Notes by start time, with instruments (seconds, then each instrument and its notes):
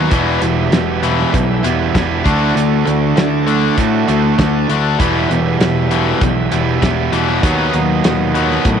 Already playing: distorted electric guitar F#3 B3 F#4
0.11 picked electric bass E1, distorted electric guitar E2 B2 E3 G3 B3 E4, tonewheel organ E4 G4 B4 E5, kick, closed hi-hat
0.41 picked electric bass E1, distorted electric guitar E2 B2, closed hi-hat
0.72 picked electric bass E1, distorted electric guitar E2 B2, snare, closed hi-hat
1.03 distorted electric guitar E2 B2 E3, closed hi-hat
1.20 snare
1.34 picked electric bass B1, distorted electric guitar E2 B2, kick, closed hi-hat
1.63 picked electric bass E1, distorted electric guitar E2 B2 E3 G3 B3 E4, closed hi-hat
1.93 picked electric bass E1, distorted electric guitar E2 B2 E3 G3 B3 E4, kick, snare, closed hi-hat
2.23 picked electric bass D2, distorted electric guitar D3 A3 D4 F#4, tonewheel organ E4 F#4 A4 D5, kick, closed hi-hat
2.55 picked electric bass D2, distorted electric guitar D3 A3, closed hi-hat
2.85 picked electric bass D2, distorted electric guitar D3 A3, closed hi-hat
3.16 picked electric bass D2, distorted electric guitar D3 A3, snare, closed hi-hat
3.47 distorted electric guitar D3 A3 D4, closed hi-hat
3.77 picked electric bass A2, distorted electric guitar D3 A3 D4 F#4, kick, closed hi-hat
4.07 picked electric bass D2, distorted electric guitar D3 A3 D4 F#4, closed hi-hat
4.38 picked electric bass D2, distorted electric guitar D3 A3, kick, snare, closed hi-hat
4.69 picked electric bass D2, distorted electric guitar D3 A3 D4, closed hi-hat
4.99 picked electric bass E1, distorted electric guitar E2 B2 E3 G3 B3 E4, tonewheel organ E4 G4 B4 E5, kick, closed hi-hat
5.30 picked electric bass E1, distorted electric guitar E2 B2, closed hi-hat
5.60 picked electric bass E1, distorted electric guitar E2 B2, snare, closed hi-hat
5.91 distorted electric guitar E2 B2 E3, closed hi-hat
6.21 picked electric bass B1, distorted electric guitar E2 B2, kick, closed hi-hat
6.51 picked electric bass E1, distorted electric guitar E2 B2 E3 G3 B3 E4, closed hi-hat
6.81 picked electric bass E1, distorted electric guitar E2 B2 E3 G3 B3 E4, kick, snare, closed hi-hat
7.12 picked electric bass E1, distorted electric guitar E2 B2 E3, closed hi-hat
7.42 picked electric bass D#2, distorted electric guitar B2 D#3 F#3 B3 D#4, tonewheel organ D#4 F#4 B4 D#5, kick, closed hi-hat
7.73 picked electric bass D#2, distorted electric guitar B2 F#3, closed hi-hat
8.04 picked electric bass D#2, distorted electric guitar B2 F#3, snare, closed hi-hat
8.34 distorted electric guitar B2 F#3 B3, closed hi-hat
8.51 snare
8.65 picked electric bass A2, distorted electric guitar B2 F#3, kick, closed hi-hat